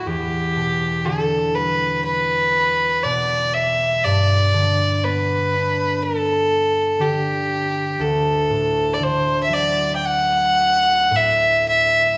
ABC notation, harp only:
X:1
M:4/4
L:1/8
Q:1/4=60
K:D
V:1 name="Harp" clef=bass
E,, B,, D, G,3 B,,2 | G,, D, B, D3 D,2 | D,, A,, D, F,3 A,,2 |]